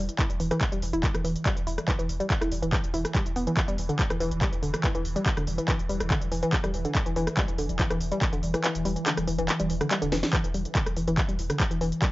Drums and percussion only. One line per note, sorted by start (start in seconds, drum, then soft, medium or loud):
0.09 closed hi-hat medium
0.19 kick loud
0.19 clap loud
0.19 closed hi-hat medium
0.30 closed hi-hat medium
0.40 open hi-hat loud
0.51 cross-stick medium
0.51 closed hi-hat medium
0.61 kick loud
0.61 clap loud
0.61 closed hi-hat loud
0.72 closed hi-hat medium
0.82 open hi-hat loud
0.93 closed hi-hat medium
1.03 kick loud
1.03 clap loud
1.03 closed hi-hat medium
1.15 cross-stick medium
1.15 closed hi-hat medium
1.25 open hi-hat loud
1.36 closed hi-hat medium
1.46 kick loud
1.46 clap loud
1.46 closed hi-hat medium
1.57 closed hi-hat medium
1.67 open hi-hat loud
1.78 cross-stick medium
1.78 closed hi-hat medium
1.88 kick loud
1.88 clap loud
1.88 closed hi-hat medium
1.99 closed hi-hat medium
2.09 open hi-hat loud
2.20 closed hi-hat soft
2.30 kick loud
2.30 clap loud
2.30 closed hi-hat medium
2.41 cross-stick loud
2.41 closed hi-hat medium
2.51 open hi-hat loud
2.63 closed hi-hat medium
2.72 kick loud
2.72 clap loud
2.72 closed hi-hat medium
2.84 closed hi-hat medium
2.94 open hi-hat loud
3.05 cross-stick medium
3.05 closed hi-hat medium
3.15 kick loud
3.15 clap loud
3.15 closed hi-hat medium
3.26 closed hi-hat medium
3.36 open hi-hat loud
3.47 closed hi-hat soft
3.57 kick loud
3.57 clap loud
3.57 closed hi-hat medium
3.68 closed hi-hat medium
3.78 open hi-hat loud
3.89 closed hi-hat soft
3.99 kick loud
3.99 clap loud
3.99 closed hi-hat medium
4.10 cross-stick loud
4.10 closed hi-hat medium
4.20 open hi-hat loud
4.31 closed hi-hat soft
4.41 kick loud
4.41 clap loud
4.41 closed hi-hat medium
4.53 closed hi-hat soft
4.63 open hi-hat loud
4.74 cross-stick loud
4.74 closed hi-hat soft
4.84 kick loud
4.84 clap loud
4.84 closed hi-hat medium
4.95 closed hi-hat soft
5.05 open hi-hat loud
5.16 closed hi-hat soft
5.26 kick loud
5.26 clap loud
5.26 closed hi-hat medium
5.37 cross-stick loud
5.37 closed hi-hat medium
5.47 open hi-hat loud
5.58 closed hi-hat medium
5.68 kick loud
5.68 clap loud
5.68 closed hi-hat medium
5.79 closed hi-hat soft
5.89 open hi-hat loud
6.00 cross-stick medium
6.00 closed hi-hat soft
6.10 kick loud
6.10 clap loud
6.10 closed hi-hat medium
6.21 closed hi-hat medium
6.32 open hi-hat loud
6.43 closed hi-hat medium
6.53 kick loud
6.53 clap loud
6.53 closed hi-hat medium
6.64 cross-stick medium
6.64 closed hi-hat medium
6.74 open hi-hat loud
6.85 closed hi-hat medium
6.95 kick loud
6.95 clap loud
6.95 closed hi-hat medium
7.06 closed hi-hat medium
7.16 open hi-hat loud
7.27 cross-stick medium
7.27 closed hi-hat medium
7.37 kick loud
7.37 clap loud
7.37 closed hi-hat medium
7.48 closed hi-hat medium
7.58 open hi-hat loud
7.69 closed hi-hat medium
7.79 kick loud
7.79 clap loud
7.79 closed hi-hat medium
7.91 cross-stick loud
7.91 closed hi-hat medium
8.01 open hi-hat loud
8.12 closed hi-hat medium
8.22 kick loud
8.22 clap loud
8.22 closed hi-hat medium
8.33 closed hi-hat medium
8.43 open hi-hat loud
8.54 cross-stick medium
8.54 closed hi-hat medium
8.64 clap loud
8.64 closed hi-hat loud
8.75 closed hi-hat medium
8.85 open hi-hat loud
8.96 closed hi-hat medium
9.06 clap loud
9.06 closed hi-hat loud
9.17 cross-stick medium
9.17 closed hi-hat medium
9.28 open hi-hat loud
9.39 closed hi-hat medium
9.49 clap loud
9.49 closed hi-hat medium
9.60 closed hi-hat medium
9.70 open hi-hat loud
9.81 cross-stick medium
9.81 closed hi-hat medium
9.91 clap loud
9.91 closed hi-hat medium
10.02 closed hi-hat medium
10.12 snare medium
10.12 open hi-hat loud
10.23 snare medium
10.23 closed hi-hat medium
10.33 kick loud
10.33 clap loud
10.33 closed hi-hat loud
10.44 closed hi-hat medium
10.54 open hi-hat loud
10.65 closed hi-hat medium
10.75 kick loud
10.75 clap loud
10.75 closed hi-hat loud
10.86 cross-stick medium
10.86 closed hi-hat medium
10.97 open hi-hat loud
11.08 closed hi-hat medium
11.18 kick loud
11.18 clap loud
11.18 closed hi-hat loud
11.29 closed hi-hat medium
11.39 open hi-hat loud
11.50 cross-stick medium
11.50 closed hi-hat medium
11.60 kick loud
11.60 clap loud
11.60 closed hi-hat medium
11.71 closed hi-hat medium
11.81 open hi-hat loud
11.92 closed hi-hat medium
12.02 kick loud
12.02 clap loud
12.02 closed hi-hat loud